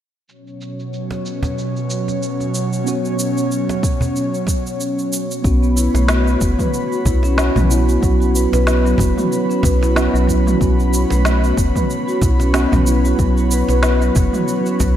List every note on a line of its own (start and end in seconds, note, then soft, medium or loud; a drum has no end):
0.28 5.40 B2 medium
0.28 5.40 F#3 medium
0.28 5.40 C#4 medium
0.28 5.40 C#5 medium
0.28 shaker soft
0.47 shaker soft
0.61 shaker medium
0.80 shaker soft
0.93 shaker soft
1.11 cajon slap medium
1.11 shaker soft
1.26 shaker medium
1.43 cajon bass medium
1.43 cajon slap medium
1.43 shaker soft
1.58 shaker soft
1.76 shaker soft
1.90 shaker medium
2.08 cajon slap soft
2.08 shaker soft
2.23 shaker soft
2.40 cajon slap soft
2.40 shaker soft
2.55 shaker medium
2.73 shaker soft
2.84 5.38 B3 medium
2.84 5.39 C#4 medium
2.84 5.40 F#4 loud
2.84 shaker soft
3.05 shaker soft
3.19 shaker medium
3.37 shaker soft
3.52 shaker soft
3.69 cajon slap medium
3.69 shaker soft
3.83 kick medium
3.83 shaker medium
4.01 cajon bass medium
4.01 shaker soft
4.16 shaker soft
4.34 shaker soft
4.47 kick medium
4.47 cajon slap medium
4.47 shaker medium
4.67 shaker soft
4.80 shaker soft
4.99 shaker soft
5.13 shaker medium
5.31 shaker soft
5.42 5.89 B1 medium
5.42 7.34 B3 medium
5.42 5.62 B3 medium
5.42 7.35 C#4 medium
5.42 14.97 F#4 medium
5.42 14.97 B4 medium
5.42 14.97 C#5 medium
5.42 14.97 B5 loud
5.42 kick loud
5.42 shaker soft
5.46 7.36 F#4 medium
5.63 5.75 B3 medium
5.63 shaker soft
5.76 5.87 E4 medium
5.76 shaker medium
5.94 6.36 B1 medium
5.94 6.08 A3 medium
5.94 cajon slap medium
5.94 shaker soft
6.08 6.25 B3 medium
6.08 snare medium
6.08 shaker soft
6.27 6.40 B3 medium
6.27 shaker soft
6.41 6.55 F#1 medium
6.41 6.58 B3 medium
6.41 kick medium
6.41 shaker medium
6.59 6.72 B4 medium
6.59 kick medium
6.59 mid tom medium
6.59 shaker soft
6.74 6.91 B3 medium
6.74 shaker soft
6.92 7.05 F#4 medium
6.92 shaker soft
7.05 7.50 B1 loud
7.05 7.16 E4 medium
7.05 cajon bass medium
7.05 kick medium
7.05 shaker medium
7.23 7.37 C#4 medium
7.23 cajon slap medium
7.23 shaker soft
7.37 7.66 B3 medium
7.37 7.54 B3 medium
7.37 7.67 C#4 medium
7.37 7.67 F#4 loud
7.37 snare medium
7.37 shaker soft
7.56 7.98 B1 loud
7.56 7.69 F#3 medium
7.56 cajon bass medium
7.56 mid tom medium
7.56 shaker soft
7.69 7.99 B3 medium
7.69 7.86 B3 medium
7.69 7.99 C#4 medium
7.69 8.00 E4 medium
7.69 shaker medium
7.88 8.01 F#4 medium
7.88 shaker soft
8.01 8.47 B1 medium
8.01 8.20 F#3 medium
8.01 9.92 B3 medium
8.01 9.93 C#4 medium
8.01 9.94 F#4 medium
8.01 kick loud
8.01 shaker soft
8.21 8.34 F#4 medium
8.21 shaker soft
8.35 8.51 B4 medium
8.35 shaker medium
8.53 8.94 B1 medium
8.53 8.61 B4 loud
8.53 cajon slap medium
8.53 shaker soft
8.67 8.84 B3 medium
8.67 snare loud
8.67 shaker soft
8.85 8.98 F#3 medium
8.85 shaker soft
8.98 9.14 F#1 medium
8.98 9.16 F#4 medium
8.98 cajon bass medium
8.98 kick loud
8.98 shaker medium
9.18 9.30 F#4 medium
9.18 mid tom medium
9.18 shaker soft
9.31 9.49 F#3 medium
9.31 shaker soft
9.50 9.58 C#4 medium
9.50 shaker soft
9.63 10.08 B1 loud
9.63 9.81 B4 medium
9.63 cajon bass medium
9.63 kick loud
9.63 cajon slap medium
9.63 shaker medium
9.82 9.94 E4 medium
9.82 cajon slap medium
9.82 shaker soft
9.95 10.24 B3 medium
9.95 10.13 B3 medium
9.95 10.25 C#4 medium
9.95 10.26 F#4 loud
9.95 snare medium
9.95 shaker soft
10.14 10.56 B1 loud
10.14 10.26 F#3 medium
10.14 shaker soft
10.28 10.38 F#3 medium
10.28 10.57 B3 medium
10.28 10.57 C#4 medium
10.28 10.58 E4 medium
10.28 kick medium
10.28 shaker medium
10.46 10.59 F#4 medium
10.46 mid tom medium
10.46 shaker soft
10.58 11.05 B1 medium
10.58 12.50 B3 medium
10.58 10.77 B3 medium
10.58 12.51 C#4 medium
10.58 12.52 F#4 medium
10.58 kick loud
10.58 shaker soft
10.79 10.91 B3 medium
10.79 shaker soft
10.93 11.03 E4 medium
10.93 shaker medium
11.10 11.53 B1 medium
11.10 11.24 A3 medium
11.10 cajon slap medium
11.10 shaker soft
11.25 11.42 B3 medium
11.25 snare medium
11.25 shaker soft
11.43 11.56 B3 medium
11.43 shaker soft
11.57 11.72 F#1 loud
11.57 11.74 B3 medium
11.57 kick medium
11.57 shaker medium
11.76 11.88 B4 medium
11.76 kick medium
11.76 mid tom medium
11.76 shaker soft
11.89 12.07 B3 medium
11.89 shaker soft
12.08 12.21 F#4 medium
12.08 shaker soft
12.22 12.66 B1 loud
12.22 12.32 E4 medium
12.22 cajon bass medium
12.22 kick loud
12.22 shaker medium
12.40 12.53 C#4 medium
12.40 cajon slap medium
12.40 shaker soft
12.53 12.83 B3 medium
12.53 12.70 B3 medium
12.53 12.83 C#4 medium
12.53 12.84 F#4 loud
12.53 snare loud
12.53 shaker soft
12.72 13.14 B1 loud
12.72 12.86 F#3 medium
12.72 cajon bass medium
12.72 mid tom medium
12.72 shaker soft
12.86 13.15 B3 medium
12.86 13.03 B3 medium
12.86 13.15 C#4 medium
12.86 13.16 E4 medium
12.86 shaker medium
13.05 13.17 F#4 medium
13.05 shaker soft
13.17 13.63 B1 loud
13.17 13.36 F#3 medium
13.17 14.97 B3 medium
13.17 14.97 C#4 medium
13.17 14.97 F#4 medium
13.17 kick loud
13.17 shaker soft
13.37 13.50 F#4 medium
13.37 shaker soft
13.51 13.68 B4 medium
13.51 shaker medium
13.69 14.11 B1 medium
13.69 13.77 B4 loud
13.69 cajon slap medium
13.69 shaker soft
13.83 14.01 B3 medium
13.83 snare medium
13.83 shaker soft
14.02 14.15 F#3 medium
14.02 shaker soft
14.16 14.30 F#1 medium
14.16 14.32 F#4 medium
14.16 kick loud
14.16 cajon bass medium
14.16 shaker medium
14.33 14.47 F#4 medium
14.33 mid tom medium
14.33 shaker soft
14.48 14.65 F#3 medium
14.48 shaker soft
14.66 14.74 C#4 medium
14.66 shaker soft
14.80 14.97 B1 medium
14.80 14.97 F#3 medium
14.80 kick loud
14.80 cajon bass medium
14.80 cajon slap medium
14.80 shaker medium